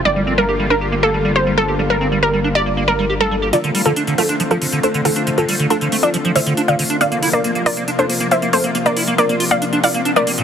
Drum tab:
HH |----------------|----------------|xxoxxxoxxxoxxxox|xxoxxxoxxxoxxxox|

HH |xxo-xxoxxxoxxxox|xxoxxxoxxxoxxxox|